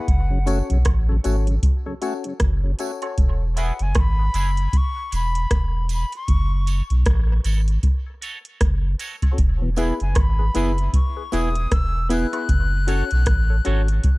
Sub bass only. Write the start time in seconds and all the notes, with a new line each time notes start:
0.09 F#1
0.71 B1
0.86 A1
1.25 G#1
2.41 F#1
3.18 E1
3.80 F#1
3.96 G#1
4.34 F#1
5.13 E1
5.51 E1
6.28 F#1
6.90 B1
7.07 A1
7.45 G#1
8.62 F#1
9.39 E1
10.01 F#1
10.17 G#1
10.56 F#1
11.33 E1
11.72 E1
12.49 F#1
13.12 B1
13.27 A1
13.67 G#1